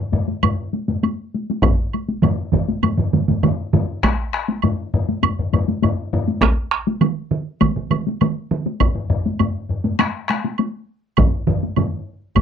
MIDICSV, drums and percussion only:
0, 0, Header, 1, 3, 480
1, 0, Start_track
1, 0, Tempo, 599401
1, 1311, Time_signature, 4, 2, 24, 8
1, 4667, Tempo, 593472
1, 9996, End_track
2, 0, Start_track
2, 0, Title_t, "Taiko and cinematic ensemble drums"
2, 99, Note_on_c, 9, 48, 41
2, 104, Note_on_c, 9, 45, 89
2, 179, Note_off_c, 9, 48, 0
2, 184, Note_off_c, 9, 45, 0
2, 222, Note_on_c, 9, 48, 46
2, 302, Note_off_c, 9, 48, 0
2, 343, Note_on_c, 9, 45, 87
2, 344, Note_on_c, 9, 48, 51
2, 423, Note_off_c, 9, 45, 0
2, 425, Note_off_c, 9, 48, 0
2, 585, Note_on_c, 9, 48, 45
2, 665, Note_off_c, 9, 48, 0
2, 706, Note_on_c, 9, 48, 47
2, 709, Note_on_c, 9, 45, 65
2, 786, Note_off_c, 9, 48, 0
2, 789, Note_off_c, 9, 45, 0
2, 829, Note_on_c, 9, 48, 61
2, 909, Note_off_c, 9, 48, 0
2, 1077, Note_on_c, 9, 48, 43
2, 1157, Note_off_c, 9, 48, 0
2, 1199, Note_on_c, 9, 48, 50
2, 1279, Note_off_c, 9, 48, 0
2, 1300, Note_on_c, 9, 41, 107
2, 1307, Note_on_c, 9, 47, 95
2, 1308, Note_on_c, 9, 45, 90
2, 1313, Note_on_c, 9, 48, 59
2, 1380, Note_off_c, 9, 41, 0
2, 1387, Note_off_c, 9, 47, 0
2, 1388, Note_off_c, 9, 45, 0
2, 1393, Note_off_c, 9, 48, 0
2, 1555, Note_on_c, 9, 48, 48
2, 1635, Note_off_c, 9, 48, 0
2, 1670, Note_on_c, 9, 48, 43
2, 1750, Note_off_c, 9, 48, 0
2, 1779, Note_on_c, 9, 47, 92
2, 1788, Note_on_c, 9, 45, 97
2, 1790, Note_on_c, 9, 48, 63
2, 1859, Note_off_c, 9, 47, 0
2, 1868, Note_off_c, 9, 45, 0
2, 1870, Note_off_c, 9, 48, 0
2, 2022, Note_on_c, 9, 41, 69
2, 2027, Note_on_c, 9, 47, 85
2, 2028, Note_on_c, 9, 48, 54
2, 2035, Note_on_c, 9, 45, 93
2, 2102, Note_off_c, 9, 41, 0
2, 2107, Note_off_c, 9, 47, 0
2, 2108, Note_off_c, 9, 48, 0
2, 2115, Note_off_c, 9, 45, 0
2, 2150, Note_on_c, 9, 48, 54
2, 2230, Note_off_c, 9, 48, 0
2, 2267, Note_on_c, 9, 47, 74
2, 2267, Note_on_c, 9, 48, 63
2, 2271, Note_on_c, 9, 45, 61
2, 2347, Note_off_c, 9, 47, 0
2, 2348, Note_off_c, 9, 48, 0
2, 2351, Note_off_c, 9, 45, 0
2, 2382, Note_on_c, 9, 47, 66
2, 2386, Note_on_c, 9, 45, 76
2, 2462, Note_off_c, 9, 47, 0
2, 2466, Note_off_c, 9, 45, 0
2, 2508, Note_on_c, 9, 47, 77
2, 2511, Note_on_c, 9, 48, 51
2, 2515, Note_on_c, 9, 45, 69
2, 2588, Note_off_c, 9, 47, 0
2, 2591, Note_off_c, 9, 48, 0
2, 2595, Note_off_c, 9, 45, 0
2, 2627, Note_on_c, 9, 47, 61
2, 2637, Note_on_c, 9, 45, 66
2, 2638, Note_on_c, 9, 48, 53
2, 2707, Note_off_c, 9, 47, 0
2, 2717, Note_off_c, 9, 45, 0
2, 2718, Note_off_c, 9, 48, 0
2, 2747, Note_on_c, 9, 47, 91
2, 2749, Note_on_c, 9, 45, 99
2, 2761, Note_on_c, 9, 48, 65
2, 2828, Note_off_c, 9, 47, 0
2, 2829, Note_off_c, 9, 45, 0
2, 2841, Note_off_c, 9, 48, 0
2, 2989, Note_on_c, 9, 47, 99
2, 2993, Note_on_c, 9, 45, 97
2, 2996, Note_on_c, 9, 48, 45
2, 3069, Note_off_c, 9, 47, 0
2, 3073, Note_off_c, 9, 45, 0
2, 3076, Note_off_c, 9, 48, 0
2, 3228, Note_on_c, 9, 41, 87
2, 3230, Note_on_c, 9, 37, 70
2, 3236, Note_on_c, 9, 48, 57
2, 3309, Note_off_c, 9, 41, 0
2, 3310, Note_off_c, 9, 37, 0
2, 3316, Note_off_c, 9, 48, 0
2, 3470, Note_on_c, 9, 37, 65
2, 3550, Note_off_c, 9, 37, 0
2, 3591, Note_on_c, 9, 48, 53
2, 3671, Note_off_c, 9, 48, 0
2, 3711, Note_on_c, 9, 45, 87
2, 3713, Note_on_c, 9, 48, 58
2, 3791, Note_off_c, 9, 45, 0
2, 3793, Note_off_c, 9, 48, 0
2, 3953, Note_on_c, 9, 45, 89
2, 4033, Note_off_c, 9, 45, 0
2, 4073, Note_on_c, 9, 48, 57
2, 4153, Note_off_c, 9, 48, 0
2, 4186, Note_on_c, 9, 48, 63
2, 4192, Note_on_c, 9, 45, 63
2, 4266, Note_off_c, 9, 48, 0
2, 4272, Note_off_c, 9, 45, 0
2, 4318, Note_on_c, 9, 45, 70
2, 4398, Note_off_c, 9, 45, 0
2, 4427, Note_on_c, 9, 48, 52
2, 4434, Note_on_c, 9, 45, 92
2, 4507, Note_off_c, 9, 48, 0
2, 4514, Note_off_c, 9, 45, 0
2, 4549, Note_on_c, 9, 48, 57
2, 4629, Note_off_c, 9, 48, 0
2, 4664, Note_on_c, 9, 48, 69
2, 4675, Note_on_c, 9, 45, 91
2, 4745, Note_off_c, 9, 48, 0
2, 4756, Note_off_c, 9, 45, 0
2, 4912, Note_on_c, 9, 45, 96
2, 4993, Note_off_c, 9, 45, 0
2, 5032, Note_on_c, 9, 48, 57
2, 5113, Note_off_c, 9, 48, 0
2, 5142, Note_on_c, 9, 37, 68
2, 5142, Note_on_c, 9, 41, 94
2, 5152, Note_on_c, 9, 48, 67
2, 5222, Note_off_c, 9, 41, 0
2, 5223, Note_off_c, 9, 37, 0
2, 5233, Note_off_c, 9, 48, 0
2, 5384, Note_on_c, 9, 37, 69
2, 5464, Note_off_c, 9, 37, 0
2, 5510, Note_on_c, 9, 48, 60
2, 5590, Note_off_c, 9, 48, 0
2, 5622, Note_on_c, 9, 47, 93
2, 5631, Note_on_c, 9, 48, 64
2, 5703, Note_off_c, 9, 47, 0
2, 5712, Note_off_c, 9, 48, 0
2, 5867, Note_on_c, 9, 47, 85
2, 5948, Note_off_c, 9, 47, 0
2, 6107, Note_on_c, 9, 48, 73
2, 6111, Note_on_c, 9, 47, 75
2, 6113, Note_on_c, 9, 41, 72
2, 6188, Note_off_c, 9, 48, 0
2, 6192, Note_off_c, 9, 47, 0
2, 6193, Note_off_c, 9, 41, 0
2, 6232, Note_on_c, 9, 47, 63
2, 6312, Note_off_c, 9, 47, 0
2, 6349, Note_on_c, 9, 47, 95
2, 6357, Note_on_c, 9, 48, 47
2, 6430, Note_off_c, 9, 47, 0
2, 6438, Note_off_c, 9, 48, 0
2, 6478, Note_on_c, 9, 48, 53
2, 6559, Note_off_c, 9, 48, 0
2, 6596, Note_on_c, 9, 47, 95
2, 6598, Note_on_c, 9, 48, 70
2, 6677, Note_off_c, 9, 47, 0
2, 6679, Note_off_c, 9, 48, 0
2, 6837, Note_on_c, 9, 47, 96
2, 6918, Note_off_c, 9, 47, 0
2, 6957, Note_on_c, 9, 48, 55
2, 7038, Note_off_c, 9, 48, 0
2, 7073, Note_on_c, 9, 48, 58
2, 7076, Note_on_c, 9, 41, 100
2, 7076, Note_on_c, 9, 45, 69
2, 7154, Note_off_c, 9, 48, 0
2, 7157, Note_off_c, 9, 41, 0
2, 7157, Note_off_c, 9, 45, 0
2, 7190, Note_on_c, 9, 45, 65
2, 7270, Note_off_c, 9, 45, 0
2, 7311, Note_on_c, 9, 45, 97
2, 7392, Note_off_c, 9, 45, 0
2, 7443, Note_on_c, 9, 48, 53
2, 7524, Note_off_c, 9, 48, 0
2, 7555, Note_on_c, 9, 45, 83
2, 7560, Note_on_c, 9, 48, 64
2, 7635, Note_off_c, 9, 45, 0
2, 7641, Note_off_c, 9, 48, 0
2, 7792, Note_on_c, 9, 45, 59
2, 7873, Note_off_c, 9, 45, 0
2, 7916, Note_on_c, 9, 45, 63
2, 7916, Note_on_c, 9, 48, 52
2, 7997, Note_off_c, 9, 45, 0
2, 7997, Note_off_c, 9, 48, 0
2, 8033, Note_on_c, 9, 37, 72
2, 8035, Note_on_c, 9, 48, 68
2, 8114, Note_off_c, 9, 37, 0
2, 8116, Note_off_c, 9, 48, 0
2, 8277, Note_on_c, 9, 37, 63
2, 8281, Note_on_c, 9, 48, 44
2, 8358, Note_off_c, 9, 37, 0
2, 8362, Note_off_c, 9, 48, 0
2, 8400, Note_on_c, 9, 48, 50
2, 8481, Note_off_c, 9, 48, 0
2, 8519, Note_on_c, 9, 48, 57
2, 8600, Note_off_c, 9, 48, 0
2, 8994, Note_on_c, 9, 48, 56
2, 8996, Note_on_c, 9, 45, 92
2, 8996, Note_on_c, 9, 47, 88
2, 8997, Note_on_c, 9, 41, 103
2, 9075, Note_off_c, 9, 48, 0
2, 9076, Note_off_c, 9, 47, 0
2, 9077, Note_off_c, 9, 45, 0
2, 9078, Note_off_c, 9, 41, 0
2, 9232, Note_on_c, 9, 47, 103
2, 9240, Note_on_c, 9, 45, 94
2, 9312, Note_off_c, 9, 47, 0
2, 9321, Note_off_c, 9, 45, 0
2, 9359, Note_on_c, 9, 48, 49
2, 9440, Note_off_c, 9, 48, 0
2, 9474, Note_on_c, 9, 45, 84
2, 9475, Note_on_c, 9, 48, 54
2, 9476, Note_on_c, 9, 47, 89
2, 9555, Note_off_c, 9, 45, 0
2, 9556, Note_off_c, 9, 48, 0
2, 9557, Note_off_c, 9, 47, 0
2, 9947, Note_on_c, 9, 41, 68
2, 9953, Note_on_c, 9, 48, 65
2, 9956, Note_on_c, 9, 45, 63
2, 9957, Note_on_c, 9, 47, 75
2, 9996, Note_off_c, 9, 41, 0
2, 9996, Note_off_c, 9, 45, 0
2, 9996, Note_off_c, 9, 47, 0
2, 9996, Note_off_c, 9, 48, 0
2, 9996, End_track
3, 0, Start_track
3, 0, Title_t, "Drums"
3, 343, Note_on_c, 9, 76, 56
3, 423, Note_off_c, 9, 76, 0
3, 828, Note_on_c, 9, 76, 34
3, 909, Note_off_c, 9, 76, 0
3, 1304, Note_on_c, 9, 76, 49
3, 1385, Note_off_c, 9, 76, 0
3, 1549, Note_on_c, 9, 76, 32
3, 1629, Note_off_c, 9, 76, 0
3, 1788, Note_on_c, 9, 76, 36
3, 1868, Note_off_c, 9, 76, 0
3, 2266, Note_on_c, 9, 76, 47
3, 2346, Note_off_c, 9, 76, 0
3, 2749, Note_on_c, 9, 76, 36
3, 2829, Note_off_c, 9, 76, 0
3, 3232, Note_on_c, 9, 76, 53
3, 3312, Note_off_c, 9, 76, 0
3, 3702, Note_on_c, 9, 76, 44
3, 3782, Note_off_c, 9, 76, 0
3, 4189, Note_on_c, 9, 76, 57
3, 4269, Note_off_c, 9, 76, 0
3, 4432, Note_on_c, 9, 76, 40
3, 4512, Note_off_c, 9, 76, 0
3, 4671, Note_on_c, 9, 76, 40
3, 4752, Note_off_c, 9, 76, 0
3, 5149, Note_on_c, 9, 76, 47
3, 5230, Note_off_c, 9, 76, 0
3, 5623, Note_on_c, 9, 76, 44
3, 5704, Note_off_c, 9, 76, 0
3, 6107, Note_on_c, 9, 76, 53
3, 6188, Note_off_c, 9, 76, 0
3, 6350, Note_on_c, 9, 76, 46
3, 6431, Note_off_c, 9, 76, 0
3, 6593, Note_on_c, 9, 76, 43
3, 6674, Note_off_c, 9, 76, 0
3, 7072, Note_on_c, 9, 76, 57
3, 7153, Note_off_c, 9, 76, 0
3, 7551, Note_on_c, 9, 76, 45
3, 7632, Note_off_c, 9, 76, 0
3, 8036, Note_on_c, 9, 76, 57
3, 8117, Note_off_c, 9, 76, 0
3, 8268, Note_on_c, 9, 76, 42
3, 8349, Note_off_c, 9, 76, 0
3, 8510, Note_on_c, 9, 76, 37
3, 8591, Note_off_c, 9, 76, 0
3, 8987, Note_on_c, 9, 76, 49
3, 9068, Note_off_c, 9, 76, 0
3, 9468, Note_on_c, 9, 76, 39
3, 9549, Note_off_c, 9, 76, 0
3, 9948, Note_on_c, 9, 76, 54
3, 9996, Note_off_c, 9, 76, 0
3, 9996, End_track
0, 0, End_of_file